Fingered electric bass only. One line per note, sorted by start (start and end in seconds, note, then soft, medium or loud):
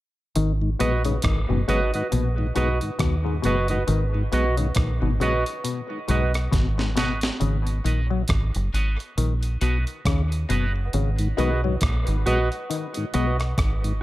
0.36 0.74 G#1 loud
0.81 1.18 A#1 medium
1.24 1.46 G#1 medium
1.50 1.66 F#1 medium
1.68 1.90 G#1 medium
2.13 2.51 A#1 medium
2.57 2.79 B1 medium
3.00 3.38 D#2 medium
3.45 3.83 F#1 medium
3.88 4.26 G#1 loud
4.33 4.71 B1 medium
4.77 4.99 A#1 medium
5.02 5.18 G#1 medium
5.20 5.43 A#1 medium
6.09 6.47 B1 medium
6.53 7.30 G#1 medium
7.41 7.79 G#1 loud
7.85 8.23 A#1 medium
8.30 8.52 G#1 medium
8.56 8.71 F#1 medium
8.74 8.96 G#1 medium
9.18 9.56 A#1 medium
9.62 9.84 B1 medium
10.06 10.44 D#2 medium
10.50 10.88 F#1 medium
10.94 11.32 G#1 loud
11.38 11.76 B1 medium
11.82 12.04 A#1 medium
12.08 12.24 G#1 medium
12.26 12.48 A#1 medium
13.15 13.53 B1 medium
13.58 14.03 G#1 medium